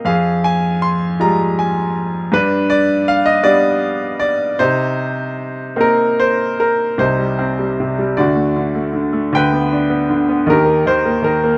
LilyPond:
<<
  \new Staff \with { instrumentName = "Grand piano" } { \time 6/8 \key c \minor \tempo 4. = 52 << { f''8 aes''8 c'''8 bes''8 aes''8 r8 | b'8 d''8 f''16 ees''16 d''4 d''8 | c''4. bes'8 c''8 bes'8 | c''4. d''4 r8 |
g''4. bes'8 c''8 bes'8 | } \\ { aes'4. r4. | d'4. r4. | ees'2~ ees'8 r8 | ees'4. fis'4. |
b'4. g'4. | } >> }
  \new Staff \with { instrumentName = "Grand piano" } { \clef bass \time 6/8 \key c \minor f,4. <g aes f'>4. | g,4. <g b d'>4. | c4. <bes c' ees'>4. | <c, c>16 g16 c'16 g16 c16 g16 <d, d>16 a16 d16 a16 d16 a16 |
<d, d>16 b16 d'16 b16 d16 b16 <ees, ees>16 bes16 ees16 bes16 ees16 bes16 | }
>>